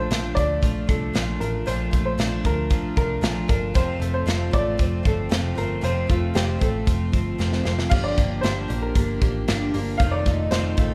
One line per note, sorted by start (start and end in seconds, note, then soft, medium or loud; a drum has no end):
0.00 0.62 F3 medium
0.00 0.10 A3 soft
0.00 0.11 D4 soft
0.00 0.10 F4 soft
0.00 0.37 C5 medium
0.10 0.32 A#1 medium
0.10 0.36 A#2 medium
0.10 0.37 F3 medium
0.10 0.37 A3 medium
0.10 0.36 D4 medium
0.10 0.35 F4 medium
0.10 snare loud
0.10 closed hi-hat medium
0.35 0.58 D2 medium
0.35 0.63 D4 medium
0.35 0.62 F4 soft
0.35 0.89 D5 loud
0.35 kick medium
0.35 closed hi-hat medium
0.39 0.62 A3 soft
0.62 0.84 A#1 medium
0.62 0.88 F3 medium
0.62 0.89 A3 medium
0.62 0.88 D4 medium
0.62 0.86 F4 medium
0.62 kick medium
0.62 closed hi-hat medium
0.87 1.10 C2 medium
0.87 1.14 A3 soft
0.87 1.15 D4 soft
0.87 1.14 F4 soft
0.87 1.42 A4 medium
0.87 kick medium
0.87 closed hi-hat medium
1.14 1.36 A#1 medium
1.14 1.40 A#2 medium
1.14 1.41 F3 medium
1.14 1.41 A3 medium
1.14 1.41 D4 medium
1.14 1.39 F4 medium
1.14 snare loud
1.14 closed hi-hat medium
1.40 1.62 A1 medium
1.40 1.66 A3 soft
1.40 1.66 D4 soft
1.40 1.67 F4 soft
1.40 1.67 A#4 medium
1.40 closed hi-hat medium
1.66 1.88 A#1 medium
1.66 1.92 A#2 medium
1.66 1.93 F3 medium
1.66 1.93 A3 medium
1.66 1.92 D4 medium
1.66 1.90 F4 medium
1.66 2.04 C5 medium
1.66 closed hi-hat medium
1.91 2.14 A#1 medium
1.91 2.17 A3 soft
1.91 2.18 D4 soft
1.91 2.18 F4 soft
1.91 kick medium
1.91 closed hi-hat medium
2.05 2.46 C5 medium
2.18 2.40 A#1 medium
2.18 2.44 A#2 medium
2.18 2.45 F3 medium
2.18 2.45 A3 medium
2.18 2.32 C4 medium
2.18 2.45 D4 medium
2.18 2.43 F4 medium
2.18 snare loud
2.18 closed hi-hat medium
2.32 2.96 D4 soft
2.44 2.71 D2 medium
2.44 2.70 A3 soft
2.44 2.71 D4 soft
2.44 2.71 F4 medium
2.44 2.96 A#4 medium
2.44 kick medium
2.44 closed hi-hat medium
2.70 2.92 A#1 medium
2.70 2.96 F3 medium
2.70 2.97 A3 medium
2.70 2.96 D4 medium
2.70 2.95 F4 medium
2.70 kick medium
2.70 closed hi-hat medium
2.96 3.18 C2 medium
2.96 3.21 A3 soft
2.96 3.22 D4 soft
2.96 3.22 F4 soft
2.96 3.48 A#4 loud
2.96 kick medium
2.96 closed hi-hat medium
3.21 3.44 A#1 medium
3.21 3.48 A#2 medium
3.21 3.49 F3 medium
3.21 3.49 A3 medium
3.21 3.49 D4 medium
3.21 3.47 F4 medium
3.21 snare loud
3.21 closed hi-hat medium
3.48 3.75 G1 medium
3.48 3.74 A3 soft
3.48 3.75 D4 soft
3.48 3.75 F4 medium
3.48 3.76 A#4 medium
3.48 kick medium
3.48 closed hi-hat medium
3.74 3.97 F1 medium
3.74 4.01 F2 medium
3.74 4.01 C3 medium
3.74 4.01 F3 medium
3.74 4.01 A3 medium
3.74 4.00 C4 medium
3.74 3.98 F4 medium
3.74 4.12 C5 medium
3.74 kick loud
3.74 closed hi-hat medium
4.00 4.22 F1 medium
4.00 4.25 F3 soft
4.00 4.26 A3 soft
4.00 4.26 C4 soft
4.00 4.26 F4 soft
4.00 closed hi-hat medium
4.14 4.50 C5 medium
4.26 4.48 F1 medium
4.26 4.53 F2 medium
4.26 4.53 C3 medium
4.26 4.53 F3 medium
4.26 4.52 A3 medium
4.26 4.52 C4 medium
4.26 4.50 F4 medium
4.26 snare medium
4.26 closed hi-hat medium
4.51 4.75 A1 loud
4.51 4.76 F3 soft
4.51 4.78 A3 soft
4.51 4.79 C4 soft
4.51 4.78 F4 medium
4.51 5.02 D5 loud
4.51 kick medium
4.51 closed hi-hat medium
4.77 5.00 F1 medium
4.77 5.04 F3 medium
4.77 5.04 A3 medium
4.77 5.04 C4 medium
4.77 5.02 F4 medium
4.77 kick medium
4.77 closed hi-hat medium
5.03 5.27 G1 medium
5.03 5.29 F3 soft
5.03 5.30 A3 soft
5.03 5.30 C4 soft
5.03 5.30 F4 soft
5.03 5.60 A4 medium
5.03 kick medium
5.03 closed hi-hat medium
5.29 5.53 F1 medium
5.29 5.56 F2 medium
5.29 5.57 C3 medium
5.29 5.57 F3 medium
5.29 5.56 A3 medium
5.29 5.55 C4 medium
5.29 5.54 F4 medium
5.29 snare loud
5.29 closed hi-hat medium
5.55 5.79 G1 medium
5.55 5.81 F3 soft
5.55 5.81 A3 soft
5.55 5.82 C4 soft
5.55 5.82 F4 medium
5.55 5.84 A#4 medium
5.55 closed hi-hat medium
5.81 6.05 F1 medium
5.81 6.08 F2 medium
5.81 6.09 C3 medium
5.81 6.09 F3 medium
5.81 6.08 A3 medium
5.81 6.07 C4 medium
5.81 6.06 F4 medium
5.81 5.90 C5 medium
5.81 closed hi-hat medium
6.07 6.31 F1 medium
6.07 6.34 F3 soft
6.07 6.35 A3 soft
6.07 6.35 C4 soft
6.07 6.34 F4 soft
6.07 6.37 F4 medium
6.07 kick medium
6.07 closed hi-hat medium
6.34 6.57 F1 medium
6.34 6.61 F2 medium
6.34 6.61 C3 medium
6.34 6.61 F3 medium
6.34 6.60 A3 medium
6.34 6.59 C4 medium
6.34 6.58 F4 medium
6.34 6.62 G4 medium
6.34 snare loud
6.34 closed hi-hat medium
6.59 6.83 A1 medium
6.59 6.84 F3 soft
6.59 6.86 A3 soft
6.59 6.87 C4 medium
6.59 6.86 F4 medium
6.59 7.62 A4 medium
6.59 kick medium
6.59 closed hi-hat medium
6.85 7.09 F1 medium
6.85 7.13 F3 medium
6.85 7.13 A3 soft
6.85 7.12 C4 medium
6.85 7.11 F4 medium
6.85 kick medium
6.85 closed hi-hat medium
7.12 7.35 G1 medium
7.12 7.38 F3 soft
7.12 7.39 A3 soft
7.12 7.39 C4 soft
7.12 7.39 F4 medium
7.12 kick medium
7.12 closed hi-hat medium
7.38 7.61 F1 medium
7.38 7.65 F2 medium
7.38 7.65 C3 medium
7.38 7.65 F3 medium
7.38 7.65 A3 medium
7.38 7.64 C4 medium
7.38 7.62 F4 medium
7.38 snare medium
7.53 snare medium
7.64 7.87 F1 medium
7.64 7.90 F3 soft
7.64 7.91 A3 medium
7.64 7.91 C4 soft
7.64 7.91 F4 medium
7.64 snare medium
7.79 snare medium
7.89 8.13 G1 loud
7.89 8.17 G2 medium
7.89 8.17 D3 medium
7.89 8.18 F3 medium
7.89 8.17 A#3 medium
7.89 8.16 D4 medium
7.89 8.15 G4 medium
7.89 8.04 F5 medium
7.89 kick loud
7.89 crash medium
8.04 8.44 D5 medium
8.16 8.39 G1 loud
8.16 8.43 F3 soft
8.16 8.43 A#3 soft
8.16 8.44 D4 soft
8.16 8.43 G4 soft
8.16 kick medium
8.16 snare soft
8.16 closed hi-hat medium
8.41 8.65 G1 medium
8.41 8.69 G2 medium
8.41 8.69 D3 medium
8.41 8.70 F3 medium
8.41 8.70 A#3 medium
8.41 8.68 D4 medium
8.41 8.67 G4 medium
8.41 8.83 C5 medium
8.41 snare loud
8.41 closed hi-hat medium
8.68 8.91 A#1 medium
8.68 8.94 F3 soft
8.68 8.95 A#3 soft
8.68 8.96 D4 soft
8.68 8.95 G4 soft
8.68 closed hi-hat medium
8.82 8.94 A#4 medium
8.95 9.17 G1 loud
8.95 9.22 F3 medium
8.95 9.22 A#3 medium
8.95 9.21 D4 medium
8.95 9.20 G4 medium
8.95 9.44 A#4 medium
8.95 kick medium
8.95 closed hi-hat medium
9.21 9.43 A1 medium
9.21 9.48 F3 soft
9.21 9.48 A#3 soft
9.21 9.48 D4 soft
9.21 9.48 G4 soft
9.21 kick medium
9.21 closed hi-hat medium
9.48 9.70 G1 medium
9.48 9.74 G2 medium
9.48 9.74 D3 medium
9.48 9.74 F3 medium
9.48 9.75 A#3 medium
9.48 9.74 D4 medium
9.48 9.73 G4 medium
9.48 snare loud
9.48 closed hi-hat medium
9.74 9.95 G1 medium
9.74 10.01 F3 soft
9.74 10.01 A#3 soft
9.74 10.01 D4 medium
9.74 10.00 G4 medium
9.74 open hi-hat medium
9.97 10.21 F1 loud
9.97 10.26 F2 medium
9.97 10.27 C3 medium
9.97 10.11 F5 medium
9.97 kick loud
9.97 closed hi-hat medium
10.02 10.27 D#3 medium
10.02 10.27 A3 medium
10.02 10.27 D#4 medium
10.02 10.26 F4 medium
10.11 10.52 D5 loud
10.26 10.47 F1 medium
10.26 10.53 A3 soft
10.26 10.53 D#4 soft
10.26 10.53 F4 medium
10.26 kick medium
10.26 snare soft
10.26 closed hi-hat medium
10.30 10.53 D#3 soft
10.51 10.73 F1 loud
10.51 10.79 F2 medium
10.51 10.79 C3 medium
10.51 10.79 D#3 medium
10.51 10.79 A3 medium
10.51 10.94 C4 medium
10.51 10.94 C5 medium
10.51 snare loud
10.51 closed hi-hat medium
10.55 10.79 D#4 medium
10.55 10.77 F4 medium
10.77 10.94 A1 medium
10.77 10.94 D#4 medium
10.77 10.94 F4 medium
10.77 kick medium
10.77 closed hi-hat medium
10.81 10.94 D#3 soft
10.81 10.94 A3 soft